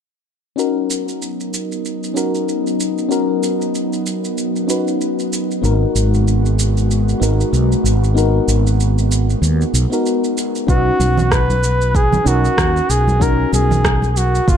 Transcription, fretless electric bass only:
5.64 G#1
5.95 G#1
7.21 G#1
7.53 B1
7.84 G#1
8.48 G#1
9.42 D#2
9.74 B1
10.68 B1
10.99 B1
12.26 B1
12.58 D#2
12.89 B1
13.53 B1
14.48 F#1

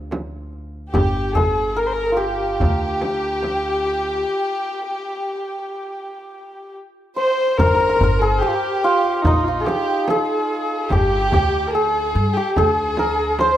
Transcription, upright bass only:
Already playing: D2
0.95 G1
2.62 D2
7.60 G1
8.01 G1
9.25 A#1
10.91 G1
11.33 D2
12.15 G2
12.58 D2

